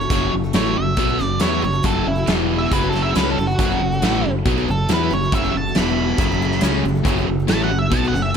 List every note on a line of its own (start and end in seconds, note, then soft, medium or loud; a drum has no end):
0.00 0.10 F#3 soft
0.00 0.11 A3 soft
0.00 0.11 F#4 soft
0.00 0.11 A4 medium
0.00 0.32 C#5 loud
0.10 0.31 F#1 loud
0.10 0.44 F#2 medium
0.10 0.33 F#2 loud
0.10 0.44 C#3 medium
0.10 0.33 C#3 loud
0.10 0.44 F#3 medium
0.10 0.33 F#3 loud
0.10 0.44 A3 medium
0.10 0.44 F#4 medium
0.10 0.43 A4 medium
0.10 kick loud
0.10 closed hi-hat medium
0.34 0.54 F#1 medium
0.34 0.51 F#2 medium
0.34 0.51 C#3 medium
0.44 0.54 F#3 soft
0.44 0.54 A3 soft
0.44 0.54 F#4 soft
0.44 0.55 A4 soft
0.53 0.75 A1 medium
0.53 0.65 F#2 medium
0.53 0.75 A2 medium
0.53 0.65 C#3 medium
0.53 0.76 E3 medium
0.53 0.66 F#3 medium
0.53 0.66 A3 medium
0.53 0.76 A3 loud
0.53 0.65 F#4 medium
0.53 0.64 A4 medium
0.53 0.76 C#5 medium
0.53 snare loud
0.53 closed hi-hat medium
0.65 1.09 F#3 soft
0.65 1.08 A3 soft
0.65 1.08 F#4 soft
0.65 1.06 A4 soft
0.76 0.97 F#1 medium
0.76 0.94 F#2 medium
0.76 0.94 C#3 medium
0.76 1.22 E5 medium
0.97 1.18 B1 medium
0.97 1.19 B2 loud
0.97 1.20 F#3 medium
0.97 1.20 B3 medium
0.97 kick loud
0.97 closed hi-hat medium
1.07 1.18 F#3 soft
1.07 1.19 A3 soft
1.07 1.19 F#4 medium
1.07 1.19 A4 medium
1.19 1.40 F#1 medium
1.19 1.37 F#2 medium
1.19 1.37 C#3 medium
1.19 1.40 F#3 medium
1.19 1.41 A3 medium
1.19 1.41 F#4 medium
1.19 1.42 A4 medium
1.19 1.40 D5 medium
1.19 snare soft
1.40 1.62 E2 loud
1.40 1.63 F#2 medium
1.40 1.63 C#3 medium
1.40 1.62 E3 medium
1.40 1.61 F#3 medium
1.40 1.63 A3 medium
1.40 1.62 B3 loud
1.40 1.63 E4 loud
1.40 1.63 F#4 medium
1.40 1.64 A4 medium
1.40 1.62 C#5 medium
1.40 snare loud
1.40 closed hi-hat medium
1.62 1.83 F#1 medium
1.62 1.80 F#2 medium
1.62 1.80 C#3 medium
1.62 1.74 F#3 medium
1.62 1.74 A3 medium
1.62 1.73 F#4 medium
1.62 1.72 A4 medium
1.62 1.85 C#5 medium
1.73 1.83 F#3 soft
1.73 1.82 A3 soft
1.73 1.83 F#4 soft
1.73 1.83 A4 medium
1.83 2.05 F#1 loud
1.83 2.17 F#2 medium
1.83 2.05 F#2 medium
1.83 2.17 C#3 medium
1.83 2.06 C#3 loud
1.83 2.17 F#3 medium
1.83 2.07 F#3 loud
1.83 2.17 A3 medium
1.83 2.16 F#4 medium
1.83 2.14 A4 medium
1.83 2.06 A4 medium
1.83 kick loud
1.83 closed hi-hat medium
2.07 2.27 F#1 medium
2.07 2.24 F#2 medium
2.07 2.24 C#3 medium
2.07 2.28 E4 loud
2.16 2.27 F#3 soft
2.16 2.28 A3 medium
2.16 2.28 F#4 soft
2.16 2.27 A4 medium
2.27 2.68 E1 loud
2.27 2.71 E2 loud
2.27 2.71 B2 loud
2.27 2.71 E3 medium
2.27 2.72 E3 loud
2.27 2.72 B3 medium
2.27 2.72 E4 medium
2.27 2.73 B4 medium
2.27 snare loud
2.27 closed hi-hat medium
2.58 2.72 E5 medium
2.71 3.12 F#1 medium
2.71 2.83 F#2 medium
2.71 3.15 F#2 medium
2.71 2.83 C#3 medium
2.71 3.14 C#3 loud
2.71 2.83 F#3 medium
2.71 3.16 F#3 loud
2.71 2.83 A3 medium
2.71 2.82 F#4 medium
2.71 2.81 A4 medium
2.71 2.89 B4 medium
2.71 kick loud
2.71 closed hi-hat medium
2.82 2.92 F#3 soft
2.82 2.92 A3 soft
2.82 2.94 F#4 soft
2.82 2.93 A4 medium
2.89 3.15 F#3 medium
2.89 3.02 A4 medium
2.94 3.15 A3 medium
2.94 3.16 F#4 medium
2.94 3.16 A4 medium
2.94 snare soft
3.02 3.16 E5 medium
3.15 3.36 C#2 medium
3.15 3.37 F#2 medium
3.15 3.36 C#3 medium
3.15 3.37 C#3 medium
3.15 3.38 F#3 medium
3.15 3.37 G#3 medium
3.15 3.38 A3 medium
3.15 3.37 C#4 loud
3.15 3.38 F#4 medium
3.15 3.38 A4 medium
3.15 3.30 B4 medium
3.15 snare loud
3.15 closed hi-hat medium
3.32 3.45 A4 medium
3.37 3.57 F#1 medium
3.37 3.55 F#2 medium
3.37 3.55 C#3 medium
3.37 3.49 F#3 medium
3.37 3.49 A3 medium
3.37 3.50 F#4 medium
3.42 3.48 A4 medium
3.47 4.30 F#4 loud
3.47 3.60 F#4 soft
3.47 3.60 A4 soft
3.51 3.59 F#3 soft
3.51 3.60 A3 soft
3.59 3.79 F#1 loud
3.59 3.80 F#2 medium
3.59 3.70 F#2 medium
3.59 3.81 C#3 loud
3.59 3.71 C#3 medium
3.59 3.81 F#3 loud
3.59 3.71 F#3 medium
3.59 3.71 A3 medium
3.59 3.70 F#4 medium
3.59 3.69 A4 medium
3.59 kick loud
3.59 closed hi-hat medium
3.70 3.93 F#3 soft
3.70 3.93 A3 soft
3.70 3.91 F#4 soft
3.70 3.91 A4 soft
3.80 4.00 F#1 medium
3.80 3.99 F#2 medium
3.80 3.99 C#3 medium
3.92 4.01 F#3 soft
3.92 4.02 A3 soft
3.92 4.03 F#4 soft
3.92 4.03 A4 soft
4.02 4.22 A1 loud
4.02 4.13 F#2 medium
4.02 4.23 A2 medium
4.02 4.13 C#3 medium
4.02 4.24 E3 loud
4.02 4.13 F#3 medium
4.02 4.14 A3 medium
4.02 4.24 A3 loud
4.02 4.13 F#4 medium
4.02 4.12 A4 medium
4.02 snare loud
4.02 closed hi-hat medium
4.13 4.58 F#3 soft
4.13 4.58 A3 soft
4.13 4.57 F#4 soft
4.13 4.56 A4 soft
4.24 4.44 F#1 medium
4.24 4.42 F#2 medium
4.24 4.42 C#3 medium
4.45 4.66 B1 medium
4.45 4.67 B2 medium
4.45 4.67 F#3 medium
4.45 4.67 B3 medium
4.45 kick loud
4.45 closed hi-hat medium
4.58 4.67 F#3 soft
4.58 4.69 A3 soft
4.58 4.68 F#4 medium
4.58 4.68 A4 medium
4.68 4.88 F#1 medium
4.68 4.85 F#2 medium
4.68 4.85 C#3 medium
4.68 4.90 F#3 medium
4.68 4.90 A3 medium
4.68 4.91 F#4 medium
4.68 4.90 A4 loud
4.68 4.91 A4 medium
4.89 5.09 E2 medium
4.89 5.11 F#2 medium
4.89 5.12 C#3 medium
4.89 5.10 E3 medium
4.89 5.09 F#3 medium
4.89 5.11 A3 medium
4.89 5.11 B3 medium
4.89 5.11 E4 medium
4.89 5.12 F#4 medium
4.89 5.12 A4 medium
4.89 snare loud
4.89 closed hi-hat medium
4.94 5.13 B4 medium
5.11 5.31 F#1 medium
5.11 5.28 F#2 medium
5.11 5.29 C#3 medium
5.11 5.22 F#3 medium
5.11 5.22 A3 medium
5.11 5.22 F#4 medium
5.11 5.22 A4 medium
5.11 5.33 C#5 medium
5.23 5.34 F#3 soft
5.23 5.34 A3 soft
5.23 5.33 F#4 soft
5.23 5.33 A4 soft
5.32 5.53 F#1 medium
5.32 5.53 F#2 loud
5.32 5.44 F#2 medium
5.32 5.54 C#3 loud
5.32 5.45 C#3 medium
5.32 5.54 F#3 loud
5.32 5.45 F#3 medium
5.32 5.45 A3 medium
5.32 5.43 F#4 medium
5.32 5.55 E5 medium
5.32 kick loud
5.32 closed hi-hat medium
5.36 5.43 A4 medium
5.44 5.67 F#3 soft
5.44 5.66 A3 soft
5.44 5.66 F#4 soft
5.44 5.65 A4 medium
5.55 5.75 F#1 medium
5.55 5.72 F#2 medium
5.55 5.72 C#3 medium
5.55 5.77 A5 loud
5.66 5.77 F#3 soft
5.66 5.78 A3 soft
5.66 5.77 F#4 medium
5.66 5.77 A4 medium
5.75 6.17 E1 medium
5.75 6.18 E2 medium
5.75 6.19 B2 loud
5.75 6.19 E3 loud
5.75 5.88 E3 medium
5.75 5.88 B3 medium
5.75 6.61 B5 medium
5.75 snare loud
5.75 closed hi-hat medium
5.80 5.89 E4 medium
5.80 5.87 B4 medium
5.88 6.21 B3 soft
5.88 6.21 E4 soft
5.88 6.20 B4 soft
6.18 6.59 F#1 medium
6.18 6.62 F#2 medium
6.18 6.31 F#2 medium
6.18 6.60 C#3 loud
6.18 6.31 C#3 medium
6.18 6.62 F#3 loud
6.18 6.31 F#3 medium
6.18 6.31 A3 medium
6.18 kick loud
6.18 closed hi-hat medium
6.23 6.31 F#4 medium
6.23 6.31 A4 medium
6.32 6.41 F#3 soft
6.32 6.41 A3 medium
6.32 6.42 F#4 medium
6.32 6.42 A4 medium
6.42 6.63 F#3 medium
6.42 6.63 A3 medium
6.42 6.64 F#4 medium
6.42 6.65 A4 medium
6.52 snare soft
6.61 6.83 C#2 medium
6.61 6.85 F#2 medium
6.61 6.83 C#3 medium
6.61 6.85 C#3 loud
6.61 6.84 F#3 medium
6.61 6.83 G#3 medium
6.61 6.84 C#4 medium
6.61 snare loud
6.61 closed hi-hat medium
6.65 6.85 A3 loud
6.65 6.86 F#4 medium
6.65 6.86 A4 loud
6.83 7.04 F#1 medium
6.83 7.01 F#2 medium
6.83 7.01 C#3 medium
6.83 6.96 F#3 medium
6.83 6.96 A3 medium
6.88 6.96 F#4 medium
6.88 6.94 A4 medium
6.95 7.07 F#3 soft
6.95 7.06 A3 soft
6.95 7.07 F#4 medium
6.95 7.06 A4 medium
7.03 7.26 F#1 loud
7.03 7.25 F#2 loud
7.03 7.17 F#2 medium
7.03 7.25 C#3 loud
7.03 7.17 C#3 medium
7.03 7.27 F#3 loud
7.03 7.17 A3 medium
7.03 kick loud
7.03 closed hi-hat medium
7.08 7.18 F#3 medium
7.08 7.18 F#4 medium
7.08 7.17 A4 loud
7.18 7.41 F#3 soft
7.18 7.40 A3 medium
7.18 7.39 F#4 medium
7.18 7.38 A4 medium
7.26 7.48 F#1 medium
7.26 7.44 F#2 medium
7.26 7.44 C#3 medium
7.40 7.50 F#3 soft
7.40 7.50 A3 soft
7.40 7.50 F#4 soft
7.40 7.50 A4 medium
7.47 7.70 A1 loud
7.47 7.60 F#2 medium
7.47 7.69 A2 medium
7.47 7.61 C#3 medium
7.47 7.70 E3 loud
7.47 7.61 F#3 medium
7.47 7.70 A3 loud
7.47 7.61 A3 medium
7.47 7.63 A5 loud
7.47 snare loud
7.47 closed hi-hat medium
7.52 7.60 F#4 medium
7.52 7.59 A4 medium
7.60 8.05 F#3 soft
7.60 8.05 A3 soft
7.60 8.04 F#4 soft
7.60 8.03 A4 soft
7.60 7.78 F#5 medium
7.70 7.91 F#1 medium
7.70 7.88 F#2 medium
7.70 7.88 C#3 medium
7.79 7.92 E5 medium
7.90 8.12 B1 medium
7.90 8.12 B2 medium
7.90 8.13 F#3 medium
7.90 8.13 B3 medium
7.90 8.07 A5 medium
7.90 kick loud
7.90 closed hi-hat medium
8.04 8.13 F#3 soft
8.04 8.15 A3 soft
8.04 8.15 F#4 medium
8.04 8.15 A4 medium
8.04 8.21 F#5 medium
8.13 8.34 F#1 medium
8.13 8.31 F#2 medium
8.13 8.31 C#3 medium
8.13 8.36 F#3 medium
8.13 8.37 A3 medium
8.13 snare soft
8.17 8.37 F#4 medium
8.17 8.37 A4 medium
8.22 8.36 E5 medium